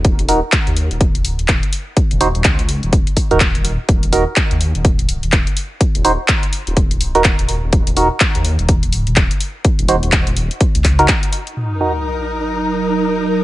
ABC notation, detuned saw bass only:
X:1
M:4/4
L:1/16
Q:"Swing 16ths" 1/4=125
K:Ebm
V:1 name="Detuned saw bass" clef=bass
E,,, E,,,2 z2 E,,2 E,,,4 E,,,2 z3 | z E,,,2 E,,, D,,3 E,,,2 z2 E,,,4 z | E,,, E,,,2 z2 E,,2 E,,,4 E,,,2 z3 | z E,,,2 z4 E,,,4 E,,,2 E,,,2 E,,, |
E,,, E,,,2 z2 E,,2 E,,,4 E,,,2 z3 | z E,,,2 E,,,2 E,,,2 z2 D,,3 z4 | z16 |]